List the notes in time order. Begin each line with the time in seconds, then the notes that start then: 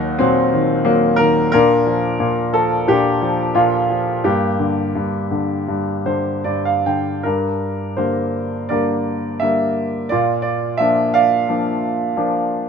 Already playing: D#2 D#3 F#3 A#3 D#4 F#4
0.19 A#2 F#3 C4
0.54 D#3
0.85 F#3 A#3
1.16 D#3 A#4
1.52 A#2 D4 A#4
1.86 F3
2.20 A#2
2.53 F3 A4
2.87 A#2 D4 G4
3.22 F3
3.55 A#2 F4
3.90 F3
4.24 G2 A#3 G4
4.59 D3
4.95 G2
5.31 D3
5.68 G2
6.06 D3 C5
6.44 G2 D5
6.65 F5
6.86 D3 G5
7.23 G2 D4 A#4
7.97 D3 G3 A#3 C5
8.69 D3 G3 A#3 A#4 D5
9.40 D3 G3 A#3 E5
10.09 A#2 F4 D5
10.42 D5
10.77 F3 A#3 D4 E5
11.14 D5 F5
11.49 F3 A#3 D4
12.17 F3 A#3 D4